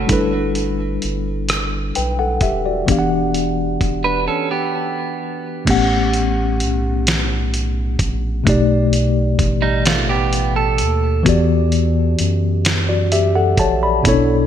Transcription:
Already playing: clean electric guitar A3 F#4
0.07 analog synth bass G1, tine electric piano G3 D4 E4, kick, closed hi-hat
0.11 tine electric piano A4 B4
0.55 closed hi-hat
1.02 analog synth bass G1, closed hi-hat
1.49 cross-stick, closed hi-hat
1.95 analog synth bass B1, tine electric piano B4 G5, closed hi-hat
2.19 tine electric piano A4 F#5
2.41 analog synth bass D#1, tine electric piano G4 E5, kick, closed hi-hat
2.66 tine electric piano F#4 D5
2.86 analog synth bass E1, tine electric piano E3 B3 D4, kick, closed hi-hat
2.90 tine electric piano G4 F5
2.99 tine electric piano F#5
3.34 closed hi-hat
3.81 analog synth bass E1, kick, closed hi-hat
4.04 clean electric guitar D4 B4
4.27 clean electric guitar C#4 A4
4.51 clean electric guitar B3 G4
5.65 analog synth bass A1, tine electric piano A2 A3 B3 C#4, kick, closed hi-hat, crash
5.69 tine electric piano G4 F#5
6.14 closed hi-hat
6.60 analog synth bass B1, closed hi-hat
7.07 snare, closed hi-hat
7.54 closed hi-hat
7.99 analog synth bass A#1, kick, closed hi-hat
8.44 analog synth bass B1, tine electric piano B2 A3 D#4, kick, closed hi-hat
8.48 tine electric piano G4 D5
8.93 closed hi-hat
9.39 analog synth bass A1, kick, closed hi-hat
9.62 clean electric guitar G3 D#4
9.86 clean electric guitar A3 F4, snare, closed hi-hat
10.09 clean electric guitar B3 G4
10.33 closed hi-hat
10.56 clean electric guitar A4
10.78 analog synth bass D#2, closed hi-hat
11.23 analog synth bass E2, tine electric piano E3 B3 F#4, kick, closed hi-hat
11.28 tine electric piano G4 D5
11.72 closed hi-hat
12.19 analog synth bass F#2, closed hi-hat
12.65 snare, closed hi-hat
12.89 tine electric piano F#4 D5
13.12 tine electric piano G4 E5, closed hi-hat
13.35 tine electric piano A4 F#5
13.57 analog synth bass A#1, tine electric piano C#5 A5, kick, closed hi-hat
13.83 tine electric piano D5 B5
14.03 analog synth bass B1, tine electric piano B2 B3 C#4 E4, kick, closed hi-hat
14.08 tine electric piano D4 A4 C#5

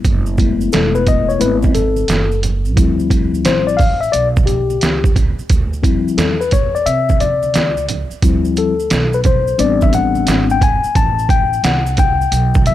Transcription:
Already playing: tine electric piano F#3 G#3 B3 E4
0.04 upright bass F#1, kick, closed hi-hat, maracas
0.26 maracas
0.37 tine electric piano G#3 A3 B3 E4, kick, closed hi-hat, maracas
0.61 maracas
0.72 upright bass E1, tine electric piano A4, snare, closed hi-hat, maracas
0.95 tine electric piano B4, maracas
1.07 tine electric piano D#5, kick, closed hi-hat, low conga, maracas
1.29 tine electric piano C#5, maracas
1.39 upright bass G#1, tine electric piano G#3 A3 B3 E4 B4, closed hi-hat, maracas
1.62 kick, high conga, maracas
1.75 tine electric piano A4, closed hi-hat, low conga, maracas
1.96 high conga, maracas
2.08 upright bass F#1, snare, closed hi-hat, maracas
2.32 high conga, maracas
2.43 closed hi-hat, high conga, low conga, maracas
2.65 maracas
2.76 upright bass D2, tine electric piano F3 G3 C4 E4, kick, closed hi-hat, maracas
2.99 maracas
3.10 kick, closed hi-hat, maracas
3.34 maracas
3.45 upright bass A1, tine electric piano C5, snare, closed hi-hat, high conga, maracas
3.67 tine electric piano D5, maracas
3.77 tine electric piano F5, kick, open hi-hat, low conga, maracas
4.01 tine electric piano E5, maracas
4.12 upright bass B1, tine electric piano D5, closed hi-hat, maracas
4.36 kick, high conga, maracas
4.46 tine electric piano G4, closed hi-hat, low conga, maracas
4.70 high conga, maracas
4.81 upright bass C#2, snare, closed hi-hat, maracas
5.04 kick, high conga, maracas
5.16 kick, closed hi-hat, high conga, low conga, maracas
5.39 muted upright bass stroke, maracas
5.50 upright bass D2, kick, closed hi-hat, maracas
5.73 maracas
5.83 tine electric piano F3 G3 C4 E4, kick, closed hi-hat, maracas
6.08 maracas
6.17 upright bass E2, tine electric piano A4, snare, closed hi-hat, maracas
6.41 tine electric piano B4, maracas
6.51 tine electric piano C#5, kick, closed hi-hat, low conga, maracas
6.75 tine electric piano D5, maracas
6.86 upright bass C3, tine electric piano E5, closed hi-hat, maracas
7.09 kick, high conga, maracas
7.20 tine electric piano D5, closed hi-hat, low conga, maracas
7.43 high conga, maracas
7.54 upright bass C#2, snare, closed hi-hat, maracas
7.77 high conga, maracas
7.89 closed hi-hat, high conga, low conga, maracas
8.10 muted upright bass stroke, maracas
8.22 upright bass D2, tine electric piano F3 G3 C4 E4, kick, closed hi-hat, maracas
8.45 maracas
8.56 tine electric piano A4, closed hi-hat, maracas
8.79 maracas
8.90 upright bass B1, snare, closed hi-hat, maracas
9.13 tine electric piano B4, maracas
9.24 tine electric piano C5, kick, closed hi-hat, low conga, maracas
9.47 maracas
9.58 upright bass A1, tine electric piano G3 B3 C4 D4 D5, closed hi-hat, maracas
9.81 tine electric piano E5, kick, high conga, maracas
9.93 tine electric piano F#5, closed hi-hat, low conga, maracas
10.15 high conga, maracas
10.27 upright bass G#1, snare, closed hi-hat, maracas
10.50 tine electric piano G5, high conga, maracas
10.61 tine electric piano G#5, kick, closed hi-hat, high conga, low conga, maracas
10.84 muted upright bass stroke, maracas
10.95 upright bass A1, tine electric piano A5, kick, closed hi-hat, maracas
11.19 maracas
11.29 tine electric piano G5, kick, closed hi-hat, maracas
11.53 maracas
11.63 upright bass C2, tine electric piano F#5, snare, closed hi-hat, maracas
11.87 maracas
11.97 tine electric piano G5, kick, closed hi-hat, low conga, maracas
12.21 maracas
12.32 upright bass B1, closed hi-hat, maracas
12.54 kick, high conga, maracas
12.66 tine electric piano E5, closed hi-hat, low conga, maracas

